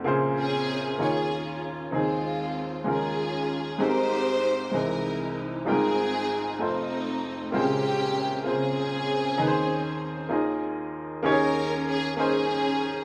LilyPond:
<<
  \new Staff \with { instrumentName = "String section" } { \time 6/8 \key ees \mixolydian \tempo 4. = 64 << { r8 aes'4 aes'4 r8 | f'4. aes'4. | c''4. bes'4 r8 | aes'4. ees'4. |
g'4. aes'4.~ | aes'2 r4 | bes'4 aes'8 aes'4. | } \\ { r8 <c' des'>4 <des' f'>4. | <aes c'>4. <des' f'>4. | <ees' g'>4. <dis' e'>4. | <c' ees'>4. <a c'>4. |
<c' des'>4. <c' des'>4.~ | <c' des'>2 r4 | des'4. des'4. | } >> }
  \new Staff \with { instrumentName = "Upright piano" } { \time 6/8 \key ees \mixolydian <des bes f' aes' c''>4. <bes ees' f' aes' des''>4. | <c' ees' aes'>4. <aes des' ees' f' bes'>4. | <aes c' ees' g' a' bes'>4. <e gis c' bes' dis''>4. | <g aes ees' f' bes' g''>4. <a c' ees' f' c''>4. |
<des aes bes c' f' c''>4. <des bes c' f' aes' c''>4. | <ees' aes' ces'' c''>4. <bes ees' f' aes' ees''>4. | <bes des' ees' g' aes' des''>4. <bes des' ees' aes' c''>4. | }
  \new Staff \with { instrumentName = "Upright piano" } { \clef bass \time 6/8 \key ees \mixolydian <bes,, bes,>4. <ees, ees>4. | <ees, ees>4. <ees, ees>4. | <aes,, aes,>4. <c, c>4. | <aes,, aes,>4. <f,, f,>4. |
<bes,, bes,>2. | <ees, ees>4. <ees, ees>4. | <ees, ees>2. | }
>>